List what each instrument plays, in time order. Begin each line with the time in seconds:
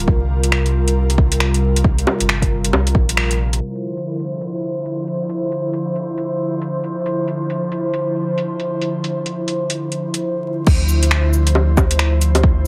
Already playing: analog synth pad G3 F4 A#4
0.07 sub bass C2, analog synth pad C3, kick
0.43 closed hi-hat
0.52 finger snap
0.66 closed hi-hat
0.88 closed hi-hat
1.10 closed hi-hat
1.18 kick
1.32 closed hi-hat
1.40 finger snap
1.54 closed hi-hat
1.76 closed hi-hat
1.84 kick
1.98 closed hi-hat
2.07 low bongo
2.20 sub bass G1, closed hi-hat
2.29 finger snap
2.42 kick, closed hi-hat
2.65 closed hi-hat
2.73 sub bass C2, low bongo
2.87 closed hi-hat
2.95 sub bass A#1, kick
3.09 closed hi-hat
3.17 finger snap
3.31 closed hi-hat
3.53 closed hi-hat
3.60 analog synth pad D3 F3 E4 C5
3.75 closed hi-hat
3.97 closed hi-hat
4.19 closed hi-hat
4.41 closed hi-hat
4.86 closed hi-hat
5.07 closed hi-hat
5.29 closed hi-hat
5.52 closed hi-hat
5.73 closed hi-hat
5.96 closed hi-hat
6.18 closed hi-hat
6.62 closed hi-hat
6.84 closed hi-hat
7.06 closed hi-hat
7.28 closed hi-hat
7.50 closed hi-hat
7.72 closed hi-hat
7.94 closed hi-hat
8.38 closed hi-hat
8.60 closed hi-hat
8.81 closed hi-hat
9.04 closed hi-hat
9.26 closed hi-hat
9.48 closed hi-hat
9.70 closed hi-hat
9.92 closed hi-hat
10.14 closed hi-hat
10.66 sub bass D2, analog synth pad D3 F3 E4 C5, kick, crash
10.89 cabasa
11.03 closed hi-hat
11.11 finger snap
11.33 cabasa
11.47 closed hi-hat
11.55 low bongo
11.77 kick, low bongo, cabasa
11.91 closed hi-hat
11.99 finger snap
12.21 closed hi-hat, cabasa
12.35 closed hi-hat, low bongo
12.43 kick